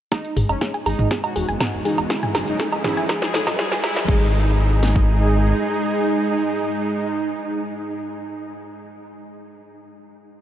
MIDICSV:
0, 0, Header, 1, 8, 480
1, 0, Start_track
1, 0, Key_signature, 5, "minor"
1, 0, Tempo, 495868
1, 113, Time_signature, 4, 2, 24, 8
1, 10081, End_track
2, 0, Start_track
2, 0, Title_t, "Synth arpeggio sound"
2, 0, Program_c, 0, 84
2, 114, Note_on_c, 0, 68, 82
2, 169, Note_off_c, 0, 68, 0
2, 354, Note_on_c, 0, 68, 76
2, 409, Note_off_c, 0, 68, 0
2, 478, Note_on_c, 0, 75, 76
2, 529, Note_off_c, 0, 75, 0
2, 593, Note_on_c, 0, 68, 97
2, 649, Note_off_c, 0, 68, 0
2, 717, Note_on_c, 0, 80, 102
2, 769, Note_off_c, 0, 80, 0
2, 834, Note_on_c, 0, 68, 76
2, 889, Note_off_c, 0, 68, 0
2, 1073, Note_on_c, 0, 68, 81
2, 1129, Note_off_c, 0, 68, 0
2, 1198, Note_on_c, 0, 75, 74
2, 1249, Note_off_c, 0, 75, 0
2, 1314, Note_on_c, 0, 68, 97
2, 1369, Note_off_c, 0, 68, 0
2, 1438, Note_on_c, 0, 80, 96
2, 1489, Note_off_c, 0, 80, 0
2, 1553, Note_on_c, 0, 68, 78
2, 1609, Note_off_c, 0, 68, 0
2, 1794, Note_on_c, 0, 68, 75
2, 1849, Note_off_c, 0, 68, 0
2, 1917, Note_on_c, 0, 75, 80
2, 1969, Note_off_c, 0, 75, 0
2, 2033, Note_on_c, 0, 68, 101
2, 2089, Note_off_c, 0, 68, 0
2, 2157, Note_on_c, 0, 80, 96
2, 2209, Note_off_c, 0, 80, 0
2, 2273, Note_on_c, 0, 68, 74
2, 2329, Note_off_c, 0, 68, 0
2, 2513, Note_on_c, 0, 69, 83
2, 2568, Note_off_c, 0, 69, 0
2, 2638, Note_on_c, 0, 75, 75
2, 2689, Note_off_c, 0, 75, 0
2, 2753, Note_on_c, 0, 68, 109
2, 2809, Note_off_c, 0, 68, 0
2, 2878, Note_on_c, 0, 80, 108
2, 2929, Note_off_c, 0, 80, 0
2, 2993, Note_on_c, 0, 68, 81
2, 3049, Note_off_c, 0, 68, 0
2, 3233, Note_on_c, 0, 69, 76
2, 3288, Note_off_c, 0, 69, 0
2, 3358, Note_on_c, 0, 75, 77
2, 3409, Note_off_c, 0, 75, 0
2, 3473, Note_on_c, 0, 68, 96
2, 3528, Note_off_c, 0, 68, 0
2, 3597, Note_on_c, 0, 80, 91
2, 3649, Note_off_c, 0, 80, 0
2, 3714, Note_on_c, 0, 68, 78
2, 3769, Note_off_c, 0, 68, 0
2, 3954, Note_on_c, 0, 68, 94
2, 4177, Note_off_c, 0, 68, 0
2, 10081, End_track
3, 0, Start_track
3, 0, Title_t, "Analog polysynth"
3, 0, Program_c, 1, 90
3, 113, Note_on_c, 1, 63, 102
3, 327, Note_off_c, 1, 63, 0
3, 478, Note_on_c, 1, 61, 91
3, 690, Note_off_c, 1, 61, 0
3, 834, Note_on_c, 1, 63, 96
3, 1047, Note_off_c, 1, 63, 0
3, 1197, Note_on_c, 1, 66, 92
3, 1410, Note_off_c, 1, 66, 0
3, 1554, Note_on_c, 1, 66, 91
3, 1699, Note_off_c, 1, 66, 0
3, 1794, Note_on_c, 1, 63, 92
3, 1939, Note_off_c, 1, 63, 0
3, 2033, Note_on_c, 1, 64, 99
3, 2247, Note_off_c, 1, 64, 0
3, 2398, Note_on_c, 1, 63, 99
3, 2610, Note_off_c, 1, 63, 0
3, 2753, Note_on_c, 1, 64, 102
3, 2967, Note_off_c, 1, 64, 0
3, 3117, Note_on_c, 1, 68, 97
3, 3329, Note_off_c, 1, 68, 0
3, 3473, Note_on_c, 1, 68, 96
3, 3619, Note_off_c, 1, 68, 0
3, 3713, Note_on_c, 1, 64, 95
3, 3859, Note_off_c, 1, 64, 0
3, 3954, Note_on_c, 1, 63, 107
3, 8530, Note_off_c, 1, 63, 0
3, 10081, End_track
4, 0, Start_track
4, 0, Title_t, "Analog synth pad"
4, 0, Program_c, 2, 89
4, 114, Note_on_c, 2, 56, 81
4, 114, Note_on_c, 2, 63, 71
4, 114, Note_on_c, 2, 68, 85
4, 1064, Note_off_c, 2, 56, 0
4, 1064, Note_off_c, 2, 63, 0
4, 1064, Note_off_c, 2, 68, 0
4, 1073, Note_on_c, 2, 52, 75
4, 1074, Note_on_c, 2, 59, 68
4, 1074, Note_on_c, 2, 66, 82
4, 2024, Note_off_c, 2, 52, 0
4, 2024, Note_off_c, 2, 59, 0
4, 2024, Note_off_c, 2, 66, 0
4, 2033, Note_on_c, 2, 54, 82
4, 2033, Note_on_c, 2, 61, 72
4, 2033, Note_on_c, 2, 68, 86
4, 2984, Note_off_c, 2, 54, 0
4, 2984, Note_off_c, 2, 61, 0
4, 2984, Note_off_c, 2, 68, 0
4, 2992, Note_on_c, 2, 64, 68
4, 2992, Note_on_c, 2, 71, 83
4, 3943, Note_off_c, 2, 64, 0
4, 3943, Note_off_c, 2, 71, 0
4, 3952, Note_on_c, 2, 56, 83
4, 3952, Note_on_c, 2, 63, 81
4, 3952, Note_on_c, 2, 68, 93
4, 8528, Note_off_c, 2, 56, 0
4, 8528, Note_off_c, 2, 63, 0
4, 8529, Note_off_c, 2, 68, 0
4, 10081, End_track
5, 0, Start_track
5, 0, Title_t, "Synth drone"
5, 0, Program_c, 3, 95
5, 113, Note_on_c, 3, 44, 79
5, 113, Note_on_c, 3, 56, 80
5, 3941, Note_off_c, 3, 44, 0
5, 3942, Note_off_c, 3, 56, 0
5, 3953, Note_on_c, 3, 44, 81
5, 3953, Note_on_c, 3, 56, 86
5, 8579, Note_off_c, 3, 44, 0
5, 8579, Note_off_c, 3, 56, 0
5, 10081, End_track
6, 0, Start_track
6, 0, Title_t, "Analog synth bass"
6, 0, Program_c, 4, 38
6, 354, Note_on_c, 4, 32, 89
6, 429, Note_off_c, 4, 32, 0
6, 478, Note_on_c, 4, 30, 78
6, 548, Note_off_c, 4, 30, 0
6, 833, Note_on_c, 4, 32, 98
6, 909, Note_off_c, 4, 32, 0
6, 958, Note_on_c, 4, 32, 78
6, 1028, Note_off_c, 4, 32, 0
6, 1314, Note_on_c, 4, 28, 97
6, 1389, Note_off_c, 4, 28, 0
6, 1438, Note_on_c, 4, 30, 85
6, 1508, Note_off_c, 4, 30, 0
6, 1678, Note_on_c, 4, 28, 81
6, 1748, Note_off_c, 4, 28, 0
6, 1918, Note_on_c, 4, 28, 77
6, 1988, Note_off_c, 4, 28, 0
6, 2274, Note_on_c, 4, 30, 90
6, 2349, Note_off_c, 4, 30, 0
6, 2398, Note_on_c, 4, 30, 82
6, 2468, Note_off_c, 4, 30, 0
6, 2753, Note_on_c, 4, 32, 100
6, 2829, Note_off_c, 4, 32, 0
6, 2877, Note_on_c, 4, 32, 81
6, 2948, Note_off_c, 4, 32, 0
6, 3234, Note_on_c, 4, 33, 93
6, 3309, Note_off_c, 4, 33, 0
6, 3357, Note_on_c, 4, 28, 81
6, 3598, Note_on_c, 4, 33, 85
6, 3613, Note_off_c, 4, 28, 0
6, 3668, Note_off_c, 4, 33, 0
6, 3838, Note_on_c, 4, 33, 81
6, 3908, Note_off_c, 4, 33, 0
6, 3953, Note_on_c, 4, 32, 104
6, 5355, Note_off_c, 4, 32, 0
6, 10081, End_track
7, 0, Start_track
7, 0, Title_t, "Riser"
7, 0, Program_c, 5, 103
7, 113, Note_on_c, 5, 60, 78
7, 3953, Note_off_c, 5, 60, 0
7, 10081, End_track
8, 0, Start_track
8, 0, Title_t, "Drums"
8, 113, Note_on_c, 9, 36, 113
8, 114, Note_on_c, 9, 38, 47
8, 114, Note_on_c, 9, 42, 43
8, 114, Note_on_c, 9, 77, 49
8, 210, Note_off_c, 9, 36, 0
8, 210, Note_off_c, 9, 38, 0
8, 210, Note_off_c, 9, 42, 0
8, 210, Note_off_c, 9, 77, 0
8, 238, Note_on_c, 9, 42, 31
8, 335, Note_off_c, 9, 42, 0
8, 354, Note_on_c, 9, 45, 84
8, 354, Note_on_c, 9, 46, 102
8, 451, Note_off_c, 9, 45, 0
8, 451, Note_off_c, 9, 46, 0
8, 478, Note_on_c, 9, 42, 32
8, 478, Note_on_c, 9, 77, 47
8, 575, Note_off_c, 9, 42, 0
8, 575, Note_off_c, 9, 77, 0
8, 593, Note_on_c, 9, 36, 112
8, 594, Note_on_c, 9, 38, 51
8, 594, Note_on_c, 9, 42, 44
8, 690, Note_off_c, 9, 36, 0
8, 691, Note_off_c, 9, 38, 0
8, 691, Note_off_c, 9, 42, 0
8, 718, Note_on_c, 9, 42, 32
8, 815, Note_off_c, 9, 42, 0
8, 834, Note_on_c, 9, 46, 85
8, 834, Note_on_c, 9, 77, 48
8, 931, Note_off_c, 9, 46, 0
8, 931, Note_off_c, 9, 77, 0
8, 959, Note_on_c, 9, 42, 32
8, 959, Note_on_c, 9, 45, 85
8, 1055, Note_off_c, 9, 42, 0
8, 1055, Note_off_c, 9, 45, 0
8, 1073, Note_on_c, 9, 36, 120
8, 1074, Note_on_c, 9, 38, 55
8, 1074, Note_on_c, 9, 42, 43
8, 1170, Note_off_c, 9, 36, 0
8, 1171, Note_off_c, 9, 38, 0
8, 1171, Note_off_c, 9, 42, 0
8, 1198, Note_on_c, 9, 42, 33
8, 1198, Note_on_c, 9, 77, 49
8, 1295, Note_off_c, 9, 42, 0
8, 1295, Note_off_c, 9, 77, 0
8, 1314, Note_on_c, 9, 46, 102
8, 1411, Note_off_c, 9, 46, 0
8, 1438, Note_on_c, 9, 42, 35
8, 1535, Note_off_c, 9, 42, 0
8, 1553, Note_on_c, 9, 36, 121
8, 1554, Note_on_c, 9, 38, 65
8, 1554, Note_on_c, 9, 42, 48
8, 1554, Note_on_c, 9, 45, 93
8, 1554, Note_on_c, 9, 77, 53
8, 1650, Note_off_c, 9, 36, 0
8, 1650, Note_off_c, 9, 38, 0
8, 1650, Note_off_c, 9, 42, 0
8, 1650, Note_off_c, 9, 45, 0
8, 1650, Note_off_c, 9, 77, 0
8, 1794, Note_on_c, 9, 46, 93
8, 1891, Note_off_c, 9, 46, 0
8, 1918, Note_on_c, 9, 42, 34
8, 1918, Note_on_c, 9, 77, 48
8, 2015, Note_off_c, 9, 42, 0
8, 2015, Note_off_c, 9, 77, 0
8, 2033, Note_on_c, 9, 36, 127
8, 2034, Note_on_c, 9, 38, 72
8, 2034, Note_on_c, 9, 42, 45
8, 2130, Note_off_c, 9, 36, 0
8, 2130, Note_off_c, 9, 38, 0
8, 2130, Note_off_c, 9, 42, 0
8, 2158, Note_on_c, 9, 42, 31
8, 2158, Note_on_c, 9, 45, 90
8, 2255, Note_off_c, 9, 42, 0
8, 2255, Note_off_c, 9, 45, 0
8, 2273, Note_on_c, 9, 38, 81
8, 2273, Note_on_c, 9, 46, 103
8, 2273, Note_on_c, 9, 77, 52
8, 2370, Note_off_c, 9, 38, 0
8, 2370, Note_off_c, 9, 46, 0
8, 2370, Note_off_c, 9, 77, 0
8, 2398, Note_on_c, 9, 42, 34
8, 2494, Note_off_c, 9, 42, 0
8, 2513, Note_on_c, 9, 36, 116
8, 2513, Note_on_c, 9, 38, 78
8, 2513, Note_on_c, 9, 42, 44
8, 2610, Note_off_c, 9, 36, 0
8, 2610, Note_off_c, 9, 38, 0
8, 2610, Note_off_c, 9, 42, 0
8, 2638, Note_on_c, 9, 42, 32
8, 2638, Note_on_c, 9, 77, 52
8, 2735, Note_off_c, 9, 42, 0
8, 2735, Note_off_c, 9, 77, 0
8, 2753, Note_on_c, 9, 38, 82
8, 2753, Note_on_c, 9, 45, 86
8, 2753, Note_on_c, 9, 46, 90
8, 2850, Note_off_c, 9, 38, 0
8, 2850, Note_off_c, 9, 45, 0
8, 2850, Note_off_c, 9, 46, 0
8, 2878, Note_on_c, 9, 42, 33
8, 2974, Note_off_c, 9, 42, 0
8, 2993, Note_on_c, 9, 36, 127
8, 2993, Note_on_c, 9, 38, 93
8, 2993, Note_on_c, 9, 42, 43
8, 2993, Note_on_c, 9, 77, 49
8, 3090, Note_off_c, 9, 36, 0
8, 3090, Note_off_c, 9, 38, 0
8, 3090, Note_off_c, 9, 42, 0
8, 3090, Note_off_c, 9, 77, 0
8, 3118, Note_on_c, 9, 38, 84
8, 3118, Note_on_c, 9, 42, 32
8, 3215, Note_off_c, 9, 38, 0
8, 3215, Note_off_c, 9, 42, 0
8, 3234, Note_on_c, 9, 38, 98
8, 3234, Note_on_c, 9, 46, 112
8, 3330, Note_off_c, 9, 38, 0
8, 3330, Note_off_c, 9, 46, 0
8, 3358, Note_on_c, 9, 38, 93
8, 3358, Note_on_c, 9, 42, 35
8, 3358, Note_on_c, 9, 45, 89
8, 3358, Note_on_c, 9, 77, 49
8, 3455, Note_off_c, 9, 38, 0
8, 3455, Note_off_c, 9, 42, 0
8, 3455, Note_off_c, 9, 45, 0
8, 3455, Note_off_c, 9, 77, 0
8, 3473, Note_on_c, 9, 36, 127
8, 3474, Note_on_c, 9, 38, 113
8, 3474, Note_on_c, 9, 42, 49
8, 3570, Note_off_c, 9, 36, 0
8, 3571, Note_off_c, 9, 38, 0
8, 3571, Note_off_c, 9, 42, 0
8, 3598, Note_on_c, 9, 38, 91
8, 3598, Note_on_c, 9, 42, 31
8, 3695, Note_off_c, 9, 38, 0
8, 3695, Note_off_c, 9, 42, 0
8, 3714, Note_on_c, 9, 38, 111
8, 3714, Note_on_c, 9, 46, 101
8, 3714, Note_on_c, 9, 77, 53
8, 3810, Note_off_c, 9, 38, 0
8, 3810, Note_off_c, 9, 46, 0
8, 3810, Note_off_c, 9, 77, 0
8, 3837, Note_on_c, 9, 38, 104
8, 3837, Note_on_c, 9, 42, 36
8, 3934, Note_off_c, 9, 38, 0
8, 3934, Note_off_c, 9, 42, 0
8, 3953, Note_on_c, 9, 36, 115
8, 3953, Note_on_c, 9, 49, 83
8, 4050, Note_off_c, 9, 36, 0
8, 4050, Note_off_c, 9, 49, 0
8, 4673, Note_on_c, 9, 38, 61
8, 4770, Note_off_c, 9, 38, 0
8, 4798, Note_on_c, 9, 36, 78
8, 4894, Note_off_c, 9, 36, 0
8, 10081, End_track
0, 0, End_of_file